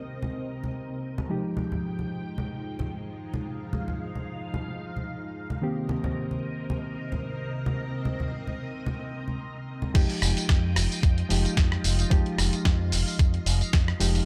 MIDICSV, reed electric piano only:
0, 0, Header, 1, 2, 480
1, 0, Start_track
1, 0, Key_signature, -4, "minor"
1, 0, Tempo, 540541
1, 1155, Time_signature, 4, 2, 24, 8
1, 12655, End_track
2, 0, Start_track
2, 0, Title_t, "Reed electric piano"
2, 0, Program_c, 0, 4
2, 0, Note_on_c, 0, 51, 65
2, 0, Note_on_c, 0, 58, 61
2, 0, Note_on_c, 0, 60, 62
2, 1125, Note_off_c, 0, 51, 0
2, 1128, Note_off_c, 0, 58, 0
2, 1130, Note_off_c, 0, 60, 0
2, 1145, Note_on_c, 0, 53, 69
2, 1151, Note_on_c, 0, 56, 62
2, 1157, Note_on_c, 0, 63, 61
2, 1163, Note_on_c, 0, 67, 72
2, 4963, Note_off_c, 0, 53, 0
2, 4966, Note_off_c, 0, 56, 0
2, 4970, Note_off_c, 0, 63, 0
2, 4972, Note_off_c, 0, 67, 0
2, 4987, Note_on_c, 0, 51, 67
2, 4992, Note_on_c, 0, 58, 65
2, 4999, Note_on_c, 0, 60, 64
2, 5004, Note_on_c, 0, 67, 79
2, 8804, Note_off_c, 0, 51, 0
2, 8807, Note_off_c, 0, 58, 0
2, 8810, Note_off_c, 0, 60, 0
2, 8813, Note_off_c, 0, 67, 0
2, 8828, Note_on_c, 0, 53, 88
2, 8834, Note_on_c, 0, 56, 82
2, 8840, Note_on_c, 0, 63, 80
2, 8845, Note_on_c, 0, 67, 98
2, 10005, Note_off_c, 0, 53, 0
2, 10008, Note_off_c, 0, 56, 0
2, 10011, Note_off_c, 0, 63, 0
2, 10014, Note_off_c, 0, 67, 0
2, 10026, Note_on_c, 0, 53, 80
2, 10032, Note_on_c, 0, 56, 76
2, 10039, Note_on_c, 0, 63, 77
2, 10044, Note_on_c, 0, 67, 93
2, 10724, Note_off_c, 0, 53, 0
2, 10727, Note_off_c, 0, 56, 0
2, 10730, Note_off_c, 0, 63, 0
2, 10733, Note_off_c, 0, 67, 0
2, 10746, Note_on_c, 0, 53, 94
2, 10753, Note_on_c, 0, 56, 89
2, 10759, Note_on_c, 0, 63, 85
2, 10765, Note_on_c, 0, 67, 105
2, 12404, Note_off_c, 0, 53, 0
2, 12407, Note_off_c, 0, 56, 0
2, 12411, Note_off_c, 0, 63, 0
2, 12413, Note_off_c, 0, 67, 0
2, 12430, Note_on_c, 0, 53, 89
2, 12433, Note_on_c, 0, 56, 82
2, 12435, Note_on_c, 0, 63, 76
2, 12439, Note_on_c, 0, 67, 97
2, 12646, Note_off_c, 0, 53, 0
2, 12647, Note_off_c, 0, 56, 0
2, 12649, Note_off_c, 0, 63, 0
2, 12651, Note_off_c, 0, 67, 0
2, 12655, End_track
0, 0, End_of_file